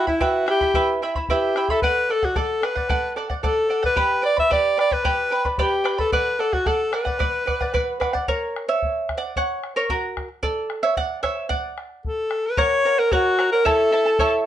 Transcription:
0.07 alto saxophone E4, charango E4 E5 B5, bombo low
0.20 charango E4 B4 E5 G5 B5, alto saxophone F#4, bombo low
0.46 charango E4 E5 G5 B5, alto saxophone G4, bombo rim
0.61 charango E4 E5 B5, bombo low
0.74 charango E4 B4 E5 G5 B5, bombo low
1.02 charango E4 E5 G5 B5
1.15 charango E4 E5 B5, bombo low
1.29 charango E4 B4 E5 G5 B5, alto saxophone G4, bombo low
1.56 charango E4 E5 G5 B5, bombo rim
1.69 charango E4 E5 B5, alto saxophone A4, bombo low
1.82 charango A4 D5 F#5, alto saxophone B4, bombo low
2.10 charango A4 D5 F#5, alto saxophone A4
2.23 alto saxophone F#4, charango D5 F#5, bombo low
2.36 charango A4 D5 F#5, alto saxophone A4, bombo low
2.62 charango A4 D5 F#5, alto saxophone B4, bombo rim
2.75 charango D5 F#5, bombo low
2.89 charango A4 D5 F#5, bombo low
3.16 charango A4 D5 F#5
3.30 charango D5 F#5, bombo low
3.43 charango A4 D5 F#5, alto saxophone A4, bombo low
3.69 charango A4 D5 F#5
3.83 alto saxophone B4, charango D5 F#5, bombo low
3.96 charango G4 B4 D5 G5 B5, bombo low
4.22 charango B4 D5 G5 B5, alto saxophone D5
4.36 charango B4 D5 B5, alto saxophone E5, bombo low
4.50 charango G4 B4 D5 G5 B5, alto saxophone D5, bombo low
4.77 charango B4 D5 G5 B5, alto saxophone D5, bombo rim
4.91 charango B4 D5 B5, alto saxophone B4, bombo low
5.05 charango G4 B4 D5 G5 B5, bombo low
5.31 charango B4 D5 G5 B5
5.45 charango B4 D5 B5, bombo low
5.58 charango G4 B4 D5 G5 B5, alto saxophone G4, bombo low
5.84 charango B4 D5 G5 B5, bombo rim
5.98 alto saxophone A4, charango B4 D5 B5, bombo low
6.12 charango A4 D5 F#5, alto saxophone B4, bombo low
6.39 charango A4 D5 F#5, alto saxophone A4
6.53 alto saxophone F#4, charango D5 F#5, bombo low
6.66 charango A4 D5 F#5, alto saxophone A4, bombo low
6.92 charango A4 D5 F#5, alto saxophone B4, bombo rim
7.05 charango D5 F#5, bombo low
7.19 charango B4 D5 F#5, bombo low
7.46 charango B4 D5 F#5, bombo low
7.61 charango D5 F#5, bombo low
7.74 charango B4 D5 F#5, bombo low
8.00 charango B4 D5 F#5, bombo rim, bombo low
8.13 charango D5 F#5, bombo low
8.28 charango A#4 C#5, bombo low
8.56 bombo rim
8.69 charango C#5 E5
8.82 bombo low
9.09 bombo rim, bombo low
9.17 charango D5 F#5
9.36 charango C#5 F#5, bombo low
9.64 bombo rim
9.76 charango A#4 C#5
9.89 charango F#4 A#4, bombo low
10.17 bombo rim, bombo low
10.43 charango A4 D5, bombo low
10.70 bombo rim
10.83 charango C#5 E5
10.97 charango D5 F#5, bombo low
11.23 charango C#5 E5, bombo rim, bombo low
11.49 charango D5 F#5, bombo low
11.78 bombo rim
12.05 alto saxophone A4, bombo low
12.31 bombo rim
12.46 alto saxophone B4
12.57 charango A#4 C#5 F#5, alto saxophone C#5, bombo low
12.85 charango A#4 C#5 F#5
12.99 alto saxophone A#4, charango C#5 F#5
13.12 alto saxophone F#4, charango A#4 C#5 F#5, bombo low
13.38 charango A#4 C#5 F#5, bombo rim
13.52 alto saxophone A#4, charango C#5 F#5
13.65 charango E4 A4 C#5 E5 A5, alto saxophone A4, bombo low
13.92 charango E4 A4 E5 A5
14.06 charango E4 A4 A5
14.19 charango E4 A4 C#5 E5 A5, bombo low

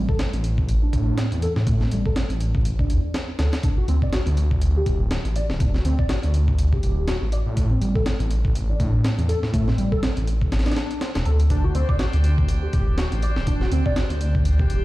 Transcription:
0.09 analog synth lead A4, kick
0.19 analog synth lead C4, snare, closed hi-hat
0.33 detuned saw bass A1, closed hi-hat
0.44 closed hi-hat
0.58 kick
0.69 closed hi-hat
0.82 analog synth lead D4
0.93 detuned saw bass A2, kick, closed hi-hat
1.17 analog synth lead C4, snare, closed hi-hat
1.32 detuned saw bass E2, closed hi-hat
1.42 analog synth lead A4, closed hi-hat
1.56 detuned saw bass A2, snare
1.67 analog synth lead A3, kick, closed hi-hat
1.81 analog synth lead C4, snare
1.91 detuned saw bass A1, analog synth lead G3, closed hi-hat
2.06 analog synth lead A4, kick
2.16 analog synth lead C4, snare, closed hi-hat
2.30 detuned saw bass A1, closed hi-hat
2.41 closed hi-hat
2.55 kick
2.65 closed hi-hat
2.79 analog synth lead D4, kick
2.89 detuned saw bass E2, closed hi-hat
3.14 analog synth lead C4, snare, closed hi-hat
3.39 detuned saw bass D2, analog synth lead A4, snare, closed hi-hat
3.53 snare, closed hi-hat
3.63 analog synth lead D4, kick, closed hi-hat
3.78 analog synth lead F#4
3.88 detuned saw bass D2, analog synth lead C4, closed hi-hat
4.02 analog synth lead D5, kick
4.13 analog synth lead F#4, snare, closed hi-hat
4.26 detuned saw bass D2, closed hi-hat
4.37 closed hi-hat
4.51 kick
4.62 closed hi-hat
4.77 analog synth lead G4
4.86 detuned saw bass D1, kick, closed hi-hat
5.11 analog synth lead F#4, snare, closed hi-hat
5.25 detuned saw bass A1, closed hi-hat
5.36 analog synth lead D5, closed hi-hat
5.49 detuned saw bass D1, snare
5.60 analog synth lead D4, kick, closed hi-hat
5.74 analog synth lead F#4, snare
5.85 detuned saw bass D2, analog synth lead C4, closed hi-hat
5.99 analog synth lead D5, kick
6.09 analog synth lead F#4, snare, closed hi-hat
6.23 detuned saw bass D2, closed hi-hat
6.34 closed hi-hat
6.48 kick
6.59 closed hi-hat
6.73 analog synth lead G4, kick
6.83 detuned saw bass D1, closed hi-hat
7.08 analog synth lead F#4, snare, closed hi-hat
7.22 detuned saw bass A1
7.32 analog synth lead D5, closed hi-hat
7.46 detuned saw bass A2
7.57 analog synth lead A3, kick, closed hi-hat
7.71 analog synth lead C4
7.81 detuned saw bass A1, analog synth lead G3, closed hi-hat
7.95 analog synth lead A4, kick
8.06 analog synth lead C4, snare, closed hi-hat
8.20 detuned saw bass A1, closed hi-hat
8.31 closed hi-hat
8.45 kick
8.55 closed hi-hat
8.69 analog synth lead D4
8.80 detuned saw bass A2, kick, closed hi-hat
9.04 analog synth lead C4, snare, closed hi-hat
9.18 detuned saw bass E2, closed hi-hat
9.28 analog synth lead A4, closed hi-hat
9.43 detuned saw bass A2, snare
9.53 analog synth lead A3, kick, closed hi-hat
9.68 analog synth lead C4, snare
9.78 detuned saw bass A1, analog synth lead G3, closed hi-hat
9.92 analog synth lead A4, kick
10.03 analog synth lead C4, snare, closed hi-hat
10.17 detuned saw bass A1, closed hi-hat
10.27 closed hi-hat
10.41 kick
10.52 snare, closed hi-hat
10.59 snare, closed hi-hat
10.66 analog synth lead D4, snare, closed hi-hat
10.71 snare, closed hi-hat
10.76 snare, closed hi-hat
10.91 closed hi-hat
11.01 analog synth lead C4, snare, closed hi-hat
11.15 detuned saw bass E1, snare, closed hi-hat
11.25 detuned saw bass D2, analog synth lead A4, closed hi-hat
11.40 closed hi-hat
11.50 tonewheel organ D3 C4 G4, analog synth lead D4, kick, closed hi-hat
11.64 analog synth lead F#4
11.75 detuned saw bass D2, analog synth lead C4, closed hi-hat
11.89 analog synth lead D5, kick
11.99 analog synth lead F#4, snare, closed hi-hat
12.13 detuned saw bass D2, closed hi-hat
12.24 closed hi-hat
12.38 kick
12.48 closed hi-hat
12.62 analog synth lead G4
12.73 detuned saw bass D1, kick, closed hi-hat
12.98 analog synth lead F#4, snare, closed hi-hat
13.12 detuned saw bass A1, closed hi-hat
13.22 analog synth lead D5, closed hi-hat
13.36 detuned saw bass D1, snare
13.47 analog synth lead D4, kick, closed hi-hat
13.61 analog synth lead F#4, snare
13.72 detuned saw bass D2, analog synth lead C4, closed hi-hat
13.86 analog synth lead D5, kick
13.96 analog synth lead F#4, snare, closed hi-hat
14.10 detuned saw bass D2, closed hi-hat
14.21 closed hi-hat
14.35 kick
14.45 closed hi-hat
14.59 analog synth lead G4, kick
14.70 detuned saw bass D1, closed hi-hat

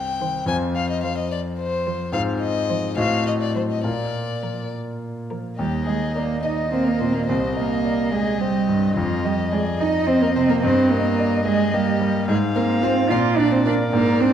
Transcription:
Already playing: grand piano C2 C4 G4 C5, violin G5
0.20 cello D#3, violin C5
0.46 grand piano F2 C4 F4 C5, violin G#5
0.75 violin F5
0.90 violin D#5
1.03 cello F3, violin C5 F5
1.18 violin D#5
1.32 violin D5
1.60 violin C5
1.86 cello F3, violin C5
2.12 grand piano G#2 C4 F4 C5, violin F5
2.41 violin D#5
2.70 cello F3, violin C5
2.97 grand piano A2 C4 F#4 D#5, violin F5
3.27 violin D#5
3.42 violin D5
3.55 cello F#3, violin C5
3.71 violin D#5
3.83 grand piano A#2 A#3 F4 F5, violin D5
4.43 cello F3, violin A#4
5.30 cello F3, violin A#4
5.59 grand piano D#2, cello G3, violin G4 D#5
5.86 cello G#3, violin G#4, grand piano D#5
6.15 cello A#3, violin A#4, grand piano D5
6.43 cello D#4, violin D#5, grand piano D#5
6.71 grand piano A#3, cello C4, violin C5
6.84 cello A#3, violin A#4
6.99 grand piano A#2, cello C4, violin C5
7.14 cello A#3, violin A#4
7.27 grand piano C2, cello C4, violin C5 D#5
7.56 cello A#3, violin A#4, grand piano D#5
7.85 grand piano D5
8.12 cello G#3, violin G#4, grand piano D#5
8.41 cello G3, grand piano C4, violin G4
8.69 grand piano G2
8.97 grand piano F2, cello F3, violin F4 D#5
9.25 cello G3, violin G4, grand piano D#5
9.52 cello G#3, violin G#4, grand piano D5
9.80 cello D#4, grand piano D#5, violin D#5
10.07 cello C4, grand piano C4, violin C5
10.22 cello A#3, violin A#4
10.35 grand piano C3, cello C4, violin C5
10.49 cello A#3, violin A#4
10.63 grand piano G2, cello C4, violin C5 D#5
10.90 cello A#3, violin A#4, grand piano D#5
11.19 grand piano D5
11.45 cello G#3, violin G#4, grand piano D#5
11.74 cello G3, grand piano A#3, violin G4
12.01 grand piano G3
12.28 grand piano G#2, cello G#3, violin G#4 F5
12.55 cello A#3, grand piano C4, violin A#4
12.83 cello C4, grand piano F4 C5, violin C5
13.10 grand piano A#2, cello F4, violin D5 F5
13.38 grand piano D4, cello D4, violin D5
13.52 cello C4, violin C5
13.65 cello D4, grand piano F4 A#4, violin D5
13.93 grand piano G#2, cello A#3, violin A#4
14.20 cello C4, grand piano D4, violin C5

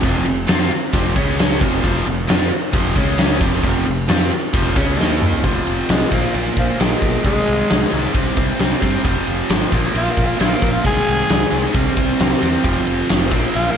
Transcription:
0.03 fingered electric bass F1, overdriven electric guitar F2 C3 F3, kick, ride
0.25 fingered electric bass F1, overdriven electric guitar F2 C3, ride
0.47 fingered electric bass F2, overdriven electric guitar F3 C4 F4, snare, ride
0.71 ride
0.93 fingered electric bass F1, overdriven electric guitar F2 C3 F3, kick, ride
1.15 fingered electric bass C#2, overdriven electric guitar C#3 G#3 C#4, kick, ride
1.39 snare, ride
1.60 fingered electric bass F1, overdriven electric guitar F2 C3 F3, kick, ride
1.83 fingered electric bass F1, overdriven electric guitar F2 C3 F3, kick, ride
2.05 fingered electric bass F1, overdriven electric guitar F2 C3, ride
2.28 fingered electric bass F2, overdriven electric guitar F3 C4 F4, snare, ride
2.51 ride
2.72 fingered electric bass F1, overdriven electric guitar F2 C3 F3, kick, ride
2.96 fingered electric bass C#2, overdriven electric guitar C#3 G#3 C#4, kick, ride
3.18 snare, ride
3.40 fingered electric bass F1, overdriven electric guitar F2 C3 F3, kick, ride
3.63 fingered electric bass F1, overdriven electric guitar F2 C3 F3, kick, ride
3.85 fingered electric bass F1, overdriven electric guitar F2 C3, ride
4.08 fingered electric bass F2, overdriven electric guitar F3 C4 F4, snare, ride
4.31 ride
4.53 fingered electric bass F1, overdriven electric guitar F2 C3 F3, kick, ride
4.75 fingered electric bass C#2, overdriven electric guitar C#3 G#3 C#4, kick, ride
4.98 fingered electric bass D#2, overdriven electric guitar D#3 A#3 D#4, snare
5.22 mid tom
5.33 floor tom
5.42 fingered electric bass F1, overdriven electric guitar F2 C3 F3, kick, ride
5.67 fingered electric bass F1, ride
5.89 fingered electric bass C2, tenor saxophone G#3, snare, ride
6.10 fingered electric bass A#1, overdriven electric guitar A#2 F3 A#3, kick, ride
6.14 tenor saxophone F3
6.34 fingered electric bass A#1, ride
6.57 fingered electric bass A#1, tenor saxophone F3, kick, ride
6.78 fingered electric bass A#1, overdriven electric guitar A#2 F3 A#3, snare, ride
6.82 tenor saxophone G#3
7.02 fingered electric bass B1, kick, ride
7.23 fingered electric bass C2, overdriven electric guitar G#2 D#3 G#3, tenor saxophone G#3, kick, ride
7.47 fingered electric bass C2, ride
7.70 fingered electric bass C2, snare, ride
7.90 fingered electric bass C2, overdriven electric guitar G#2 D#3 G#3, ride
8.04 snare
8.13 fingered electric bass C2, overdriven electric guitar C3 G3 C4, kick, ride
8.37 fingered electric bass C2, kick, ride
8.59 fingered electric bass C2, snare, ride
8.81 fingered electric bass G2, overdriven electric guitar C3 G3 C4, kick, ride
9.03 fingered electric bass F1, overdriven electric guitar F2 C3 F3, kick, ride
9.27 fingered electric bass F1, ride
9.49 fingered electric bass G#1, snare, ride
9.72 fingered electric bass A#1, overdriven electric guitar A#2 F3 A#3, kick, ride
9.95 fingered electric bass A#1, tenor saxophone F4, ride
10.12 tenor saxophone A#3
10.17 fingered electric bass A#1, kick, ride
10.27 tenor saxophone F4
10.38 fingered electric bass A#1, overdriven electric guitar A#2 F3 A#3, tenor saxophone F4, snare, ride
10.56 tenor saxophone A#3
10.62 fingered electric bass A#1, kick, ride
10.72 tenor saxophone F4
10.83 fingered electric bass C2, overdriven electric guitar G#2 D#3 G#3, tenor saxophone G#4, kick, ride
11.08 fingered electric bass C2, ride
11.29 fingered electric bass C2, snare, ride
11.51 fingered electric bass C2, overdriven electric guitar G#2 D#3 G#3, ride
11.64 snare
11.73 fingered electric bass C2, overdriven electric guitar C3 G3 C4, kick, ride
11.97 fingered electric bass C2, kick, ride
12.20 fingered electric bass C2, snare, ride
12.41 fingered electric bass E2, overdriven electric guitar C3 G3 C4, ride
12.62 fingered electric bass F1, overdriven electric guitar F2 C3 F3, kick, ride
12.87 fingered electric bass F1, ride
13.09 fingered electric bass F1, snare, ride
13.31 fingered electric bass A#1, overdriven electric guitar A#2 F3 A#3, kick, ride
13.54 fingered electric bass A#1, tenor saxophone F4, ride
13.71 tenor saxophone A#3

